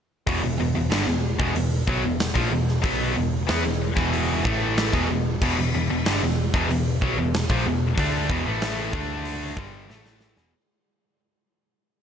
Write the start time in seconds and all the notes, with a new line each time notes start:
0.27 E1 E2 B2, kick, open hi-hat
0.43 E1 E2 B2
0.60 E1 E2 B2
0.75 E1 E2 B2
0.91 G1 G2 D3, snare, open hi-hat
1.07 E1 E2 B2
1.39 E1 E2 B2, kick
1.55 E1 E2 B2, open hi-hat
1.87 B1 B2 F#3, kick
2.03 E1 E2 B2
2.20 snare, open hi-hat
2.34 A#1 A#2 F3, kick
2.50 E1 E2 B2
2.68 snare
2.82 B1 B2 F#3 B3, kick, open hi-hat
3.15 E1 E2 B2
3.47 E2 E3 B3, snare, open hi-hat
3.63 E1 E2 B2
3.96 E1 E2 B2 E3, kick, snare
4.13 open hi-hat
4.44 A1 A2 E3 A3, kick
4.77 snare, open hi-hat
4.93 E1 E2 B2, kick
5.09 E1 E2 B2
5.42 E1 E2 B2, kick, crash
5.57 E1 E2 B2
5.74 E1 E2 B2
5.90 E1 E2 B2
6.06 G1 G2 D3, snare, open hi-hat
6.23 E1 E2 B2
6.54 E1 E2 B2, kick, snare
6.70 E1 E2 B2, open hi-hat
7.02 B1 B2 F#3, kick
7.18 E1 E2 B2
7.34 snare, open hi-hat
7.50 A#1 A#2 F3, kick
7.66 E1 E2 B2
7.98 D2 D3 A3 D4, kick, open hi-hat
8.29 E1 E2 B2, kick
8.45 A1 A2 E3 A3
8.62 snare, open hi-hat
8.93 D2 D3 A3 D4, kick
9.25 open hi-hat
9.56 G1 G2 D3 G3, kick
9.88 A1 A2 E3 A3, snare
10.06 snare
10.21 snare
10.36 E1 E2 B2, snare